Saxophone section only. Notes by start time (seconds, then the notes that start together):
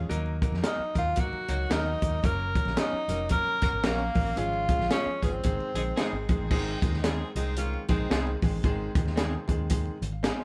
0.95 D#4 F#4 A#4
1.49 D#4 F#4 A#4
1.70 D#4 F#4 A#4
3.09 C#4 F#4 A#4
3.63 C#4 F#4 A#4
3.84 C#4 F#4 A#4
5.22 C#4 F4 G#4
5.76 C4 D#4 G#4
5.97 C4 D#4 G#4
6.50 G#3 C4 D#4
7.04 C4 D#4 G#4
7.36 G#3 C4 D#4
7.58 A#3 C#4 F4
7.90 G#3 C4 D#4